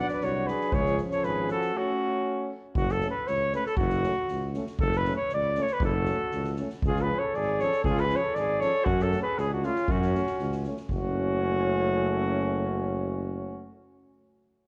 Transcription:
Already playing: trombone F#3, euphonium D4
0.00 trumpet D5
0.08 flugelhorn D5, snare
0.13 trumpet B4
0.21 tuba C2, trumpet F#4, flugelhorn C#5, snare
0.47 trumpet G#4, flugelhorn B4, snare
0.60 snare
0.72 tuba C#2, trombone F3, euphonium C#4, flugelhorn C#5, kick
0.78 trumpet G#4
0.86 snare
0.97 snare
1.11 flugelhorn C#5, snare
1.15 trumpet A4
1.23 tuba G#1, flugelhorn B4, snare
1.29 trumpet G#4
1.48 flugelhorn A4, snare
1.53 trumpet F#4
1.61 snare
1.74 trombone A3, euphonium C#4, trumpet C#4, flugelhorn F#4
2.75 tuba F#1, flugelhorn F#4, kick
2.89 flugelhorn A4, snare
3.01 trombone A3, euphonium C#4, snare
3.11 flugelhorn B4
3.27 tuba C#2, flugelhorn C#5, snare
3.52 trombone A3, euphonium C#4, flugelhorn B4, snare
3.66 flugelhorn A4, snare
3.77 tuba F#1, flugelhorn F#4, kick
3.89 snare
4.02 trombone A3, euphonium C#4, snare
4.28 tuba C#2, snare
4.54 trombone A3, euphonium C#4, snare
4.66 snare
4.79 tuba F#1, flugelhorn A4, kick
4.92 snare
4.97 flugelhorn B4
5.04 trombone A3, euphonium C#4, snare
5.16 flugelhorn C#5
5.29 tuba C#2, snare
5.34 flugelhorn D5
5.54 trombone A3, euphonium C#4, snare
5.62 flugelhorn C#5
5.67 snare
5.73 flugelhorn B4
5.80 tuba F#1, kick
5.85 trumpet F#4, flugelhorn A4
6.05 euphonium C#4, snare
6.10 trombone A3
6.31 tuba C#2, snare
6.44 snare
6.56 trombone A3, euphonium C#4, snare
6.70 snare
6.82 tuba C#2, kick
6.87 trumpet F4, flugelhorn G#4
6.96 snare
7.02 trumpet G#4, flugelhorn B4
7.09 trombone F3, euphonium C#4
7.19 trumpet A4, flugelhorn C#5
7.34 tuba G#1, trumpet G#4, flugelhorn D5, snare
7.59 trombone F3, euphonium C#4, flugelhorn C#5, snare
7.64 trumpet A4
7.72 snare
7.84 tuba C#2, trumpet F4, flugelhorn G#4, kick
7.97 flugelhorn B4, snare
8.05 trumpet G#4
8.09 trombone F3, euphonium C#4, snare
8.16 flugelhorn C#5
8.21 trumpet A4
8.34 tuba G#1, flugelhorn D5, snare
8.39 trumpet G#4
8.60 trombone F3, euphonium C#4, trumpet A4, flugelhorn C#5, snare
8.85 tuba F#2, trumpet C#4, flugelhorn F#4, kick
8.99 flugelhorn A4, snare
9.04 trumpet F#4
9.11 trombone A3, euphonium C#4, snare
9.22 trumpet G#4, flugelhorn B4
9.38 tuba C#2, trumpet C#4, flugelhorn G#4, snare
9.49 trumpet D4
9.53 flugelhorn F#4
9.63 trombone A3, euphonium C#4, trumpet C#4, flugelhorn F4, snare
9.75 snare
9.88 tuba F#2, trumpet C#4, flugelhorn F#4, kick
10.02 snare
10.13 trombone A3, euphonium C#4, snare
10.26 snare
10.39 tuba C#2, snare
10.52 snare
10.63 trombone A3, euphonium C#4, snare
10.76 snare
10.89 tuba F#1, trombone A3, euphonium C#4, trumpet C#4, flugelhorn F#4, kick

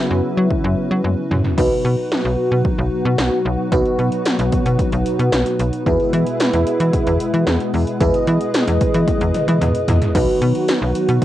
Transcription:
Already playing: analog synth pad C#3 F#3 B3 E4, fm electric piano C#4 F#4 B4
0.11 fm bass F#2
0.37 fm bass F#3
0.51 kick
0.64 fm bass F#2
0.91 fm bass F#3
1.04 fm bass F#2, high tom
1.31 fm bass F#2, mid tom
1.44 floor tom
1.58 fm bass B1, analog synth pad B2 F#3 B3 F#4, fm electric piano D#4 F#4 B4, kick, crash
1.85 fm bass B2
2.12 snare
2.25 fm bass B1
2.51 fm bass B2
2.65 kick
2.78 fm bass B1
3.05 fm bass B2
3.18 fm bass B1, snare
3.45 fm bass B1
3.72 fm bass B1, fm electric piano D#4 F#4 B4, kick, closed hi-hat
3.86 closed hi-hat
3.99 fm bass B2, closed hi-hat
4.12 closed hi-hat
4.26 snare, closed hi-hat
4.39 fm bass B1, closed hi-hat
4.52 kick, closed hi-hat
4.66 fm bass B2, closed hi-hat
4.79 kick, closed hi-hat
4.92 fm bass B1, closed hi-hat
5.06 closed hi-hat
5.19 fm bass B2, closed hi-hat
5.32 fm bass B1, snare, closed hi-hat
5.46 closed hi-hat
5.59 fm bass B1, closed hi-hat
5.73 closed hi-hat
5.86 fm bass E2, analog synth pad G#3 E4, fm electric piano E4 G#4 B4, kick, closed hi-hat
6.00 closed hi-hat
6.13 fm bass E3, closed hi-hat
6.26 closed hi-hat
6.40 snare, closed hi-hat
6.53 fm bass E2, closed hi-hat
6.67 closed hi-hat
6.80 fm bass E3, closed hi-hat
6.93 kick, closed hi-hat
7.07 fm bass E2, closed hi-hat
7.20 closed hi-hat
7.33 fm bass E3, closed hi-hat
7.47 fm bass E2, snare, closed hi-hat
7.60 closed hi-hat
7.74 fm bass E2, open hi-hat
7.87 closed hi-hat
8.01 fm bass E2, fm electric piano E4 G#4 B4, analog synth pad D#5, kick, closed hi-hat
8.14 closed hi-hat
8.27 fm bass E3, closed hi-hat
8.41 closed hi-hat
8.54 snare, closed hi-hat
8.67 fm bass E2, closed hi-hat
8.81 kick, closed hi-hat
8.94 fm bass E3, closed hi-hat
9.08 kick, closed hi-hat, high tom
9.21 fm bass E2, closed hi-hat
9.34 closed hi-hat, mid tom
9.48 fm bass E3, closed hi-hat, mid tom
9.61 fm bass E2, closed hi-hat, mid tom
9.75 closed hi-hat
9.88 fm bass E2, closed hi-hat, floor tom
10.02 closed hi-hat, floor tom
10.15 fm bass B1, analog synth pad D#3 F#3 B3 F#4, fm electric piano D#4 F#4 B4, kick, closed hi-hat, crash
10.42 fm bass B2, closed hi-hat
10.55 closed hi-hat
10.68 snare, closed hi-hat
10.82 fm bass B1
10.95 closed hi-hat
11.09 fm bass B2, closed hi-hat

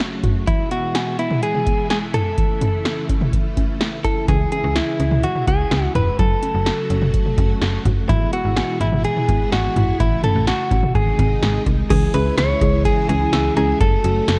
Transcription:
Already playing: string machine C#3 F#3 A3 F#4
0.00 synth pluck A3, snare, closed hi-hat
0.23 synth pluck F#4, kick, closed hi-hat, mid tom
0.47 string machine B2 E3 G#3 E4, synth pluck E3, clean electric guitar E4, kick, closed hi-hat
0.71 synth pluck B3, clean electric guitar F#4, closed hi-hat
0.95 synth pluck G#5, snare, closed hi-hat
1.19 synth pluck B3, clean electric guitar E4, closed hi-hat
1.30 mid tom
1.43 synth pluck E3, clean electric guitar G#4, closed hi-hat
1.55 mid tom
1.66 synth pluck B3, kick, closed hi-hat
1.90 synth pluck G#3, clean electric guitar G#4, snare, closed hi-hat
2.14 synth pluck E4, clean electric guitar A4, closed hi-hat, mid tom
2.38 string machine C#3 A3, synth pluck E3, kick, closed hi-hat
2.61 synth pluck C#4, closed hi-hat, mid tom
2.85 synth pluck A5, snare, closed hi-hat
3.09 synth pluck C#4, kick, closed hi-hat
3.21 mid tom
3.33 synth pluck E3, kick, closed hi-hat
3.57 synth pluck C#4, kick, closed hi-hat
3.81 synth pluck A3, snare, closed hi-hat
4.04 synth pluck E4, clean electric guitar A4, kick, closed hi-hat
4.28 fm bass C#2, string machine E3 G#3, synth pluck E3, clean electric guitar G#4, kick, closed hi-hat
4.52 synth pluck C#4, clean electric guitar G#4, closed hi-hat
4.64 fm bass C#2
4.76 clean electric guitar E4, synth pluck G#5, snare, closed hi-hat
5.00 fm bass C#2, synth pluck C#4, closed hi-hat
5.11 mid tom
5.23 synth pluck E3, clean electric guitar F#4, closed hi-hat
5.36 mid tom
5.47 fm bass C#2, synth pluck C#4, clean electric guitar G#4, kick, closed hi-hat
5.71 fm bass C#2, synth pluck G#3, snare, closed hi-hat
5.95 fm bass E1, synth pluck E4, clean electric guitar B4, closed hi-hat, mid tom
6.19 fm bass F#1, string machine C#3 F#3 A3 F#4, synth pluck F#3, clean electric guitar A4, kick, closed hi-hat
6.42 synth pluck C#4, closed hi-hat
6.54 fm bass F#1
6.66 synth pluck A5, snare, closed hi-hat
6.90 fm bass F#1, synth pluck C#4, closed hi-hat
7.02 mid tom
7.14 synth pluck F#3, kick, closed hi-hat
7.26 mid tom
7.38 fm bass F#1, synth pluck C#4, kick, closed hi-hat
7.62 fm bass F#1, synth pluck A3, snare, closed hi-hat
7.85 fm bass F#1, synth pluck F#4, kick, closed hi-hat, mid tom
8.09 fm bass G#1, string machine B2 E3 G#3 E4, synth pluck E3, clean electric guitar E4, kick, closed hi-hat
8.33 synth pluck B3, clean electric guitar F#4, closed hi-hat
8.45 fm bass G#1
8.57 synth pluck G#5, snare, closed hi-hat
8.81 fm bass G#1, synth pluck B3, clean electric guitar E4, closed hi-hat
8.92 mid tom
9.04 synth pluck E3, clean electric guitar G#4, closed hi-hat
9.17 mid tom
9.28 fm bass G#1, synth pluck B3, kick, closed hi-hat
9.52 fm bass G#1, synth pluck G#3, clean electric guitar F#4, snare, closed hi-hat
9.76 fm bass G#1, synth pluck E4, closed hi-hat, mid tom
10.00 fm bass A1, string machine C#3 A3, synth pluck E3, clean electric guitar E4, kick, closed hi-hat
10.23 synth pluck C#4, clean electric guitar A4, closed hi-hat, mid tom
10.35 fm bass A1
10.47 clean electric guitar F#4, synth pluck A5, snare, closed hi-hat
10.71 fm bass A1, synth pluck C#4, kick, closed hi-hat
10.83 mid tom
10.95 fm bass G#1, string machine C3 D#3 G#3 D#4, synth pluck D#3, clean electric guitar G#4, kick, closed hi-hat
11.19 fm bass G#1, synth pluck C4, kick, closed hi-hat
11.43 fm bass G#1, synth pluck G#3, snare, closed hi-hat
11.66 fm bass C2, synth pluck D#4, kick, closed hi-hat
11.90 fm bass C#2, string machine C#3 E3 G#3 E4, synth pluck E3, clean electric guitar G#4, kick, closed hi-hat, crash
12.14 fm bass C#2, synth keys G#3 C#4 E4 G#4, synth pluck G#3, clean electric guitar B4, closed hi-hat
12.26 synth keys G#3 C#4 E4 G#4
12.38 fm bass C#2, synth pluck E3, clean electric guitar C#5, snare, closed hi-hat
12.61 fm bass C#2, synth pluck G#3, synth keys G#3 C#4 E4 G#4, kick, closed hi-hat
12.74 synth keys G#3 C#4 E4 G#4
12.85 clean electric guitar G#4, kick, closed hi-hat
13.09 fm bass C#2, synth pluck G#3, synth keys G#3 C#4 E4 G#4, clean electric guitar G#4, closed hi-hat
13.21 synth keys G#3 C#4 E4 G#4
13.33 fm bass C#2, synth pluck E6, snare, closed hi-hat
13.57 fm bass C#2, synth keys G#3 C#4 E4 G#4, clean electric guitar G#4, synth pluck G#5, closed hi-hat, cowbell
13.69 synth keys G#3 C#4 E4 G#4
13.81 fm bass F#1, synth pluck F#3, string machine F#3 A3 F#4, clean electric guitar A4, kick, closed hi-hat
14.04 fm bass F#1, synth keys A3 C#4 F#4 A4, synth pluck A3, closed hi-hat
14.16 synth keys A3 C#4 F#4 A4
14.28 fm bass F#1, synth pluck F#3, snare, closed hi-hat

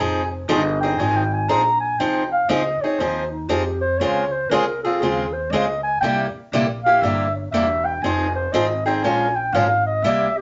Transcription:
0.00 upright bass F1, steel-string acoustic guitar F3 C4 D#4 G#4, clarinet G#5
0.31 clarinet C5
0.48 upright bass G1, steel-string acoustic guitar F3 C4 D#4 G#4, clarinet D#5
0.80 steel-string acoustic guitar D#4 G#4, clarinet G5
0.85 steel-string acoustic guitar C4
0.98 upright bass G#1, steel-string acoustic guitar F3 C4 D#4 G#4, clarinet G#5
1.17 clarinet G5
1.34 clarinet G#5
1.48 upright bass A#1, steel-string acoustic guitar F3 C4 D#4 G#4, clarinet A#5
1.80 clarinet G#5
1.99 upright bass C2, steel-string acoustic guitar F3 C4 D#4 G#4, clarinet G5
2.32 clarinet F5
2.48 upright bass C#2, steel-string acoustic guitar F3 C4 D#4 G#4, clarinet D#5
2.81 steel-string acoustic guitar C4 D#4 G#4, clarinet C#5, muted upright bass stroke
2.98 upright bass D#2, steel-string acoustic guitar F3 C4 D#4 G#4, clarinet C5
3.31 clarinet D#4
3.49 upright bass F2, steel-string acoustic guitar F3 C4 D#4 G#4, clarinet G4
3.81 clarinet C5
3.98 upright bass C#2, steel-string acoustic guitar C#3 G#3 C4 F4 G#4, clarinet C#5
4.32 clarinet C5
4.49 upright bass C2, steel-string acoustic guitar C#3 G#3 C4 F4 G#4, clarinet A#4
4.83 steel-string acoustic guitar C4 F4 G#4, clarinet A4
5.00 upright bass D#2, steel-string acoustic guitar C#3 G#3 C4 F4 G#4, clarinet G#4
5.33 clarinet C5
5.50 upright bass C#2, steel-string acoustic guitar C#3 G#3 C4 F4, clarinet D#5
5.54 steel-string acoustic guitar G#4
5.83 clarinet G#5
6.01 upright bass C2, steel-string acoustic guitar C3 G3 A#3 E4 G4, clarinet G5
6.34 muted upright bass stroke
6.52 upright bass A#1, steel-string acoustic guitar C3 G3 A#3 E4 G4
6.84 steel-string acoustic guitar A#3 E4 G4, clarinet F5
7.01 upright bass G1, steel-string acoustic guitar C3 G3 A#3 E4 G4, clarinet E5
7.35 clarinet C#5
7.51 upright bass E1, steel-string acoustic guitar C3 G3 A#3 E4 G4, clarinet E5
7.84 clarinet G5
8.02 upright bass F1, steel-string acoustic guitar F3 C4 D#4 G#4, clarinet G#5
8.35 clarinet C5
8.52 upright bass G#1, steel-string acoustic guitar F3 C4 D#4 G#4, clarinet D#5
8.86 steel-string acoustic guitar C4 D#4 G#4, clarinet G5
9.02 upright bass A#1, steel-string acoustic guitar F3 G#3 C#4 F4 A#4, clarinet G#5
9.36 clarinet G5
9.52 upright bass G#1, steel-string acoustic guitar F3 G#3 C#4 F4 A#4, clarinet F5
9.86 clarinet D#5
10.02 upright bass C2, steel-string acoustic guitar C3 G3 A#3 E4 G4, clarinet E5
10.37 clarinet G4

